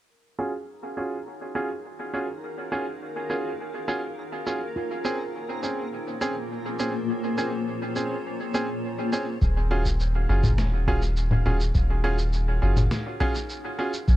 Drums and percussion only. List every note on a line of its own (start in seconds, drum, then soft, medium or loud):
0.39 shaker soft
0.97 shaker soft
1.55 shaker soft
2.14 shaker soft
2.72 shaker soft
3.30 shaker soft
3.88 shaker soft
4.47 shaker soft
5.05 shaker soft
5.63 shaker soft
6.21 shaker soft
6.79 shaker soft
7.38 shaker soft
7.96 shaker soft
8.54 shaker soft
9.13 shaker soft
9.42 kick loud
9.42 shaker soft
9.85 kick medium
9.85 shaker medium
10.00 shaker soft
10.44 kick loud
10.44 low conga medium
10.44 shaker soft
10.58 snare medium
10.58 shaker soft
10.87 kick medium
11.02 shaker soft
11.16 shaker soft
11.31 low conga medium
11.60 shaker medium
11.75 kick loud
11.75 shaker soft
12.18 shaker medium
12.33 shaker soft
12.77 low conga medium
12.77 shaker medium
12.91 snare medium
12.91 shaker soft
13.20 kick loud
13.35 shaker soft
13.49 shaker soft
13.93 shaker medium
14.08 kick loud
14.08 shaker soft